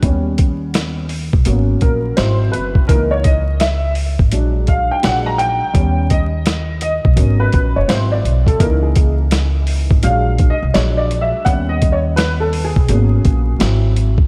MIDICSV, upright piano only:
0, 0, Header, 1, 2, 480
1, 0, Start_track
1, 0, Tempo, 714286
1, 21, Time_signature, 4, 2, 24, 8
1, 9592, End_track
2, 0, Start_track
2, 0, Title_t, "Upright piano"
2, 0, Program_c, 0, 0
2, 22, Note_on_c, 0, 55, 53
2, 24, Note_on_c, 0, 59, 46
2, 28, Note_on_c, 0, 61, 61
2, 715, Note_off_c, 0, 55, 0
2, 715, Note_off_c, 0, 59, 0
2, 717, Note_off_c, 0, 61, 0
2, 980, Note_on_c, 0, 54, 53
2, 983, Note_on_c, 0, 58, 50
2, 985, Note_on_c, 0, 59, 46
2, 988, Note_on_c, 0, 61, 55
2, 1221, Note_on_c, 0, 70, 72
2, 1436, Note_off_c, 0, 54, 0
2, 1438, Note_off_c, 0, 58, 0
2, 1439, Note_off_c, 0, 59, 0
2, 1441, Note_off_c, 0, 61, 0
2, 1444, Note_off_c, 0, 70, 0
2, 1456, Note_on_c, 0, 72, 86
2, 1457, Note_on_c, 0, 54, 55
2, 1461, Note_on_c, 0, 60, 53
2, 1463, Note_on_c, 0, 64, 58
2, 1682, Note_off_c, 0, 72, 0
2, 1691, Note_on_c, 0, 71, 79
2, 1915, Note_off_c, 0, 54, 0
2, 1917, Note_off_c, 0, 60, 0
2, 1918, Note_off_c, 0, 64, 0
2, 1932, Note_on_c, 0, 70, 90
2, 1941, Note_on_c, 0, 52, 55
2, 1943, Note_off_c, 0, 71, 0
2, 1945, Note_on_c, 0, 58, 49
2, 1947, Note_on_c, 0, 63, 65
2, 2090, Note_on_c, 0, 73, 91
2, 2096, Note_off_c, 0, 70, 0
2, 2176, Note_on_c, 0, 75, 96
2, 2181, Note_off_c, 0, 73, 0
2, 2286, Note_off_c, 0, 52, 0
2, 2288, Note_off_c, 0, 58, 0
2, 2289, Note_off_c, 0, 63, 0
2, 2420, Note_on_c, 0, 76, 96
2, 2426, Note_off_c, 0, 75, 0
2, 2644, Note_off_c, 0, 76, 0
2, 2904, Note_on_c, 0, 54, 55
2, 2908, Note_on_c, 0, 56, 48
2, 2912, Note_on_c, 0, 62, 60
2, 3148, Note_on_c, 0, 77, 92
2, 3302, Note_on_c, 0, 79, 87
2, 3303, Note_off_c, 0, 77, 0
2, 3359, Note_off_c, 0, 54, 0
2, 3361, Note_off_c, 0, 56, 0
2, 3363, Note_off_c, 0, 62, 0
2, 3379, Note_on_c, 0, 54, 55
2, 3382, Note_on_c, 0, 56, 52
2, 3385, Note_on_c, 0, 62, 60
2, 3387, Note_off_c, 0, 79, 0
2, 3390, Note_on_c, 0, 78, 101
2, 3537, Note_on_c, 0, 82, 97
2, 3544, Note_off_c, 0, 78, 0
2, 3618, Note_on_c, 0, 79, 111
2, 3624, Note_off_c, 0, 82, 0
2, 3836, Note_off_c, 0, 54, 0
2, 3838, Note_off_c, 0, 56, 0
2, 3839, Note_off_c, 0, 62, 0
2, 3853, Note_on_c, 0, 55, 56
2, 3860, Note_on_c, 0, 59, 51
2, 3862, Note_on_c, 0, 61, 62
2, 4101, Note_on_c, 0, 75, 97
2, 4114, Note_off_c, 0, 79, 0
2, 4202, Note_off_c, 0, 55, 0
2, 4206, Note_off_c, 0, 59, 0
2, 4207, Note_off_c, 0, 61, 0
2, 4554, Note_off_c, 0, 75, 0
2, 4582, Note_on_c, 0, 75, 94
2, 4812, Note_on_c, 0, 54, 52
2, 4814, Note_on_c, 0, 70, 47
2, 4816, Note_on_c, 0, 59, 48
2, 4819, Note_on_c, 0, 61, 56
2, 4972, Note_on_c, 0, 71, 89
2, 4988, Note_off_c, 0, 75, 0
2, 5216, Note_on_c, 0, 73, 78
2, 5221, Note_off_c, 0, 71, 0
2, 5272, Note_off_c, 0, 54, 0
2, 5273, Note_off_c, 0, 70, 0
2, 5274, Note_off_c, 0, 59, 0
2, 5276, Note_off_c, 0, 61, 0
2, 5294, Note_on_c, 0, 54, 54
2, 5295, Note_off_c, 0, 73, 0
2, 5296, Note_on_c, 0, 60, 49
2, 5300, Note_on_c, 0, 72, 86
2, 5301, Note_on_c, 0, 64, 57
2, 5454, Note_on_c, 0, 74, 83
2, 5459, Note_off_c, 0, 72, 0
2, 5678, Note_off_c, 0, 74, 0
2, 5695, Note_on_c, 0, 69, 78
2, 5754, Note_off_c, 0, 54, 0
2, 5755, Note_off_c, 0, 60, 0
2, 5757, Note_off_c, 0, 64, 0
2, 5775, Note_on_c, 0, 52, 56
2, 5781, Note_on_c, 0, 58, 51
2, 5782, Note_on_c, 0, 70, 84
2, 5783, Note_off_c, 0, 69, 0
2, 5785, Note_on_c, 0, 63, 63
2, 5930, Note_on_c, 0, 68, 66
2, 5940, Note_off_c, 0, 70, 0
2, 6156, Note_off_c, 0, 68, 0
2, 6711, Note_off_c, 0, 52, 0
2, 6714, Note_off_c, 0, 58, 0
2, 6716, Note_off_c, 0, 63, 0
2, 6740, Note_on_c, 0, 54, 53
2, 6742, Note_on_c, 0, 77, 91
2, 6744, Note_on_c, 0, 56, 50
2, 6749, Note_on_c, 0, 62, 54
2, 7056, Note_on_c, 0, 75, 91
2, 7071, Note_off_c, 0, 77, 0
2, 7086, Note_off_c, 0, 54, 0
2, 7088, Note_off_c, 0, 56, 0
2, 7090, Note_off_c, 0, 62, 0
2, 7218, Note_on_c, 0, 73, 94
2, 7220, Note_on_c, 0, 54, 55
2, 7223, Note_off_c, 0, 75, 0
2, 7225, Note_on_c, 0, 56, 51
2, 7227, Note_on_c, 0, 62, 61
2, 7254, Note_off_c, 0, 73, 0
2, 7374, Note_on_c, 0, 74, 95
2, 7535, Note_on_c, 0, 76, 95
2, 7542, Note_off_c, 0, 74, 0
2, 7677, Note_off_c, 0, 54, 0
2, 7679, Note_off_c, 0, 56, 0
2, 7680, Note_off_c, 0, 62, 0
2, 7693, Note_on_c, 0, 78, 108
2, 7696, Note_on_c, 0, 55, 58
2, 7702, Note_on_c, 0, 59, 51
2, 7703, Note_off_c, 0, 76, 0
2, 7706, Note_on_c, 0, 61, 58
2, 7855, Note_on_c, 0, 75, 95
2, 7862, Note_off_c, 0, 78, 0
2, 8012, Note_on_c, 0, 73, 89
2, 8023, Note_off_c, 0, 75, 0
2, 8049, Note_off_c, 0, 73, 0
2, 8173, Note_on_c, 0, 71, 90
2, 8334, Note_on_c, 0, 69, 88
2, 8342, Note_off_c, 0, 71, 0
2, 8497, Note_on_c, 0, 68, 92
2, 8503, Note_off_c, 0, 69, 0
2, 8632, Note_off_c, 0, 55, 0
2, 8635, Note_off_c, 0, 59, 0
2, 8636, Note_off_c, 0, 61, 0
2, 8662, Note_on_c, 0, 54, 52
2, 8667, Note_on_c, 0, 58, 50
2, 8668, Note_on_c, 0, 59, 50
2, 8670, Note_on_c, 0, 61, 58
2, 9118, Note_off_c, 0, 54, 0
2, 9120, Note_off_c, 0, 58, 0
2, 9121, Note_off_c, 0, 59, 0
2, 9122, Note_off_c, 0, 61, 0
2, 9134, Note_on_c, 0, 54, 59
2, 9139, Note_on_c, 0, 60, 52
2, 9145, Note_on_c, 0, 64, 59
2, 9192, Note_off_c, 0, 68, 0
2, 9483, Note_off_c, 0, 54, 0
2, 9485, Note_off_c, 0, 60, 0
2, 9488, Note_off_c, 0, 64, 0
2, 9592, End_track
0, 0, End_of_file